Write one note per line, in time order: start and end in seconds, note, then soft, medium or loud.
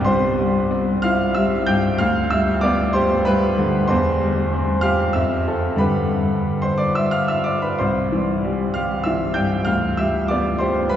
0.01 1.93 C2 medium
0.01 1.03 C6 medium
0.06 0.99 C5 medium
0.38 0.90 G3 soft
0.71 1.23 C4 soft
1.02 1.56 E4 medium
1.02 1.34 F5 medium
1.02 1.36 F6 medium
1.35 1.88 G3 soft
1.35 1.66 E5 medium
1.35 1.68 E6 medium
1.66 2.00 G2 medium
1.66 1.97 G5 medium
1.66 1.99 G6 medium
1.98 3.84 D2 medium
1.98 2.29 F5 medium
1.98 2.31 F6 medium
2.30 2.82 G3 soft
2.30 2.61 E5 medium
2.30 2.62 E6 medium
2.61 3.13 B3 medium
2.61 2.92 D5 medium
2.61 2.93 D6 medium
2.93 3.45 G4 medium
2.93 3.23 C5 medium
2.93 3.25 C6 medium
3.25 3.77 G3 medium
3.25 3.85 B4 medium
3.25 3.88 B5 medium
3.58 3.89 D3 medium
3.88 5.11 E2 medium
3.88 4.78 C5 medium
3.88 4.81 C6 medium
4.21 4.70 G3 medium
4.53 5.02 C4 soft
4.81 5.14 G4 medium
4.81 5.12 F5 medium
4.81 5.13 F6 medium
5.13 5.78 F2 medium
5.13 5.75 E5 medium
5.13 5.79 E6 medium
5.48 5.76 C4 soft
5.48 5.76 A4 soft
5.76 7.72 G2 medium
5.76 7.73 D3 soft
5.76 7.73 G3 soft
5.76 7.74 G4 soft
5.76 6.60 B5 medium
5.80 6.57 B4 medium
6.62 6.78 C5 medium
6.62 6.78 C6 medium
6.78 6.94 D5 medium
6.78 6.94 D6 medium
6.95 7.11 E5 medium
6.95 7.12 E6 medium
7.11 7.27 F5 medium
7.11 7.28 F6 medium
7.28 7.44 E5 medium
7.28 7.45 E6 medium
7.44 7.61 D5 soft
7.44 7.61 D6 medium
7.62 7.78 B4 soft
7.62 7.78 B5 medium
7.79 9.66 C2 medium
7.79 8.72 C5 soft
7.79 8.76 C6 medium
8.12 8.63 E3 soft
8.44 8.95 G3 soft
8.74 9.25 G4 soft
8.74 9.04 F5 medium
8.74 9.06 F6 medium
9.04 9.56 E3 soft
9.04 9.34 E5 soft
9.04 9.36 E6 medium
9.34 9.68 G2 soft
9.34 9.65 G5 medium
9.34 9.67 G6 medium
9.65 10.96 D2 soft
9.65 9.97 F5 soft
9.65 9.98 F6 medium
9.97 10.50 G3 soft
9.97 10.28 E5 medium
9.97 10.30 E6 medium
10.28 10.80 B3 soft
10.28 10.59 D5 medium
10.28 10.61 D6 medium
10.58 10.96 G4 medium
10.58 10.90 C5 medium
10.58 10.91 C6 medium
10.89 10.96 G3 soft
10.89 10.96 B4 medium
10.89 10.96 B5 medium